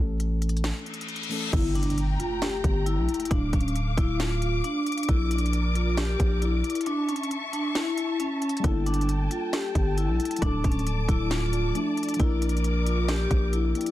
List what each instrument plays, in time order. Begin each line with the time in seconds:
Already playing: 808-style bass A1, synth keys E3 A3 C#4 A4
0.20 closed hi-hat
0.42 closed hi-hat
0.49 closed hi-hat
0.57 closed hi-hat
0.64 snare, closed hi-hat, reverse cymbal
0.86 closed hi-hat
0.94 closed hi-hat
1.01 closed hi-hat
1.08 closed hi-hat
1.16 closed hi-hat
1.23 closed hi-hat
1.29 synth keys E3 A3 C#4 A4, open hi-hat
1.53 808-style bass G1, string section A3 G5 A#5, vibraphone E4, kick, closed hi-hat, crash, impact
1.75 vibraphone D4, closed hi-hat
1.83 closed hi-hat
1.90 closed hi-hat
1.98 closed hi-hat
2.19 vibraphone F4, closed hi-hat
2.42 vibraphone G4, snare, closed hi-hat
2.64 808-style bass G1, kick, closed hi-hat
2.86 vibraphone E4, closed hi-hat
2.97 808-style bass A#1
3.09 closed hi-hat
3.14 closed hi-hat
3.20 closed hi-hat
3.25 closed hi-hat
3.31 808-style bass D1, vibraphone D4, string section F5 D6, kick, closed hi-hat
3.53 808-style bass D1, vibraphone C#4, kick, closed hi-hat
3.61 closed hi-hat
3.68 closed hi-hat
3.76 closed hi-hat
3.97 808-style bass D1, vibraphone E4, kick, closed hi-hat
4.20 vibraphone F4, snare, closed hi-hat
4.42 closed hi-hat
4.64 vibraphone D4, closed hi-hat
4.86 closed hi-hat
4.92 closed hi-hat
4.98 closed hi-hat
5.03 closed hi-hat
5.09 808-style bass A#1, vibraphone E4, string section A#4 D5, kick, closed hi-hat
5.31 vibraphone D4, closed hi-hat
5.38 closed hi-hat
5.46 closed hi-hat
5.53 closed hi-hat
5.75 vibraphone F4, closed hi-hat
5.97 vibraphone G4, snare, closed hi-hat
6.20 808-style bass A#1, kick, closed hi-hat
6.42 vibraphone E4, closed hi-hat
6.64 closed hi-hat
6.70 closed hi-hat
6.75 closed hi-hat
6.81 closed hi-hat
6.86 vibraphone D4, string section E5 A5 C#6, closed hi-hat
7.09 vibraphone C#4, closed hi-hat
7.16 closed hi-hat
7.23 closed hi-hat
7.31 closed hi-hat
7.53 vibraphone D4, closed hi-hat
7.75 vibraphone E4, snare, closed hi-hat
7.98 closed hi-hat
8.20 vibraphone C#4, closed hi-hat
8.42 closed hi-hat, open hi-hat
8.49 closed hi-hat
8.57 synth keys G3, closed hi-hat
8.62 808-style bass G1, synth keys A#3 D4, vibraphone E4, string section G5, kick, closed hi-hat
8.67 synth keys A4
8.86 vibraphone D4, closed hi-hat
8.94 closed hi-hat
9.01 closed hi-hat
9.09 closed hi-hat
9.31 vibraphone F4, closed hi-hat
9.53 vibraphone G4, snare, closed hi-hat
9.75 808-style bass G1, kick, closed hi-hat
9.97 vibraphone E4, closed hi-hat
10.09 808-style bass A#1
10.20 closed hi-hat
10.25 closed hi-hat
10.31 closed hi-hat
10.36 synth keys F3, closed hi-hat
10.41 808-style bass D1, synth keys A3 D4, vibraphone D4, string section D5 D6, kick, closed hi-hat
10.46 synth keys A4
10.64 808-style bass D1, vibraphone C#4, kick, closed hi-hat
10.72 closed hi-hat
10.79 closed hi-hat
10.87 closed hi-hat
11.09 808-style bass D1, vibraphone E4, kick, closed hi-hat
11.31 vibraphone F4, snare, closed hi-hat
11.53 closed hi-hat
11.74 synth keys F3 A3 D4 E4, vibraphone D4, closed hi-hat
11.97 closed hi-hat
12.03 closed hi-hat
12.09 closed hi-hat
12.14 synth keys F3, closed hi-hat
12.19 808-style bass A#1, synth keys A#3 D4, vibraphone E4, string section A#4 D6, kick, closed hi-hat
12.24 synth keys A#4
12.42 vibraphone D4, closed hi-hat
12.49 closed hi-hat
12.57 closed hi-hat
12.64 closed hi-hat
12.86 vibraphone F4, closed hi-hat
13.08 vibraphone G4, snare, closed hi-hat
13.31 808-style bass A#1, kick, closed hi-hat
13.53 vibraphone E4, closed hi-hat
13.74 synth keys F3 A#3 D4 G4, closed hi-hat
13.81 closed hi-hat
13.86 closed hi-hat